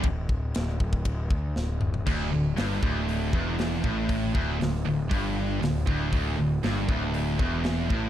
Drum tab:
CC |----------------|x---------------|----------------|----------------|
RD |b---b---b-------|----------------|----------------|----------------|
HH |----------------|----o---o---o---|o---o---o---o---|o---o---o---o---|
SD |----o-------o---|----o-------o---|----o-------o---|----o-------o---|
T2 |--------------o-|----------------|----------------|----------------|
FT |---------------o|----------------|----------------|----------------|
BD |o-o---ooo-o-----|o-----o---o---o-|o-o-----o-----o-|o-----o---o---o-|